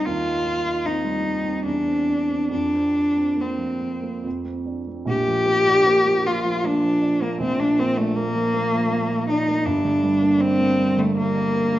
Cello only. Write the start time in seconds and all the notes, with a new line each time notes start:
0.05 F4
0.85 D#4
1.65 D4
2.51 D4
3.41 C4
5.08 G4
6.26 F4
6.65 D4
7.22 A#3
7.41 C4
7.59 D4
7.79 C4
7.97 A3
8.15 A#3
9.29 D#4
9.65 D4
10.40 C4
10.99 A3
11.17 A#3